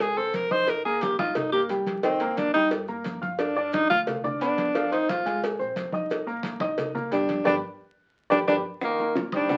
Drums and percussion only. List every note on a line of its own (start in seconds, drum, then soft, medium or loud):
0.00 high conga soft
0.00 maracas medium
0.17 high conga soft
0.17 maracas soft
0.34 cowbell medium
0.34 high conga medium
0.34 maracas medium
0.51 high conga medium
0.51 maracas soft
0.67 cowbell loud
0.67 high conga soft
0.67 maracas medium
0.85 high conga soft
0.85 maracas soft
1.01 cowbell medium
1.01 high conga loud
1.01 maracas medium
1.19 high conga loud
1.19 maracas soft
1.35 cowbell loud
1.35 high conga soft
1.35 low conga medium
1.35 maracas medium
1.53 high conga soft
1.53 maracas soft
1.69 cowbell medium
1.69 high conga soft
1.69 maracas medium
1.86 cowbell medium
1.86 high conga medium
1.86 maracas soft
2.03 cowbell loud
2.03 high conga soft
2.03 maracas medium
2.20 cowbell medium
2.20 high conga soft
2.20 maracas soft
2.37 cowbell medium
2.37 high conga loud
2.37 maracas medium
2.54 cowbell medium
2.54 high conga soft
2.54 maracas soft
2.71 cowbell loud
2.71 high conga soft
2.71 maracas medium
2.88 high conga soft
2.88 maracas soft
3.04 cowbell medium
3.04 high conga medium
3.04 maracas medium
3.22 high conga medium
3.22 maracas soft
3.39 cowbell loud
3.39 high conga soft
3.39 maracas medium
3.55 high conga soft
3.55 maracas soft
3.72 cowbell medium
3.72 high conga loud
3.72 maracas medium
3.90 high conga loud
3.90 maracas soft
4.07 cowbell loud
4.07 high conga soft
4.07 low conga medium
4.07 maracas medium
4.24 high conga soft
4.24 low conga medium
4.24 maracas soft
4.41 cowbell medium
4.41 high conga soft
4.41 maracas medium
4.58 cowbell medium
4.58 high conga medium
4.58 maracas soft
4.75 cowbell loud
4.75 high conga soft
4.75 maracas medium
4.92 cowbell medium
4.92 high conga soft
4.92 maracas soft
5.09 cowbell medium
5.09 high conga loud
5.09 maracas medium
5.26 cowbell medium
5.26 high conga soft
5.26 maracas soft
5.42 cowbell loud
5.42 high conga soft
5.42 maracas medium
5.60 high conga soft
5.60 maracas soft
5.76 cowbell medium
5.76 high conga medium
5.76 maracas medium
5.92 high conga medium
5.92 maracas soft
6.10 cowbell loud
6.10 high conga soft
6.10 maracas medium
6.27 high conga soft
6.27 maracas soft
6.43 cowbell medium
6.43 high conga loud
6.43 maracas medium
6.60 high conga loud
6.60 maracas soft
6.78 cowbell loud
6.78 high conga soft
6.78 low conga medium
6.78 maracas medium
6.95 high conga soft
6.95 low conga medium
6.95 maracas soft
7.12 cowbell medium
7.12 high conga soft
7.12 maracas medium
7.29 cowbell medium
7.29 high conga medium
7.29 maracas soft
7.45 cowbell loud
7.45 high conga loud
7.45 maracas loud
8.31 cowbell loud
8.31 high conga loud
8.31 maracas loud
8.48 cowbell loud
8.48 high conga loud
8.48 maracas loud
8.81 high bongo medium
8.81 high conga soft
8.81 maracas medium
8.99 high bongo soft
8.99 high conga soft
8.99 maracas soft
9.15 high bongo medium
9.15 high conga loud
9.15 maracas medium
9.32 high conga medium
9.32 maracas soft
9.49 high bongo medium
9.49 high conga soft
9.49 low conga medium
9.49 maracas medium